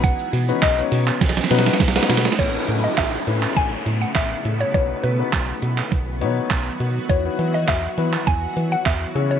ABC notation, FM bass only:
X:1
M:4/4
L:1/8
Q:1/4=102
K:Bmix
V:1 name="FM bass" clef=bass
B,,, B,, B,,, B,, B,,, B,, B,,, B,, | A,,, A,, A,,, A,, A,,, A,, A,,, A,, | B,,, B,, B,,, B,, B,,, B,, B,,, B,, | E,, E, E,, E, E,, E, E,, C, |]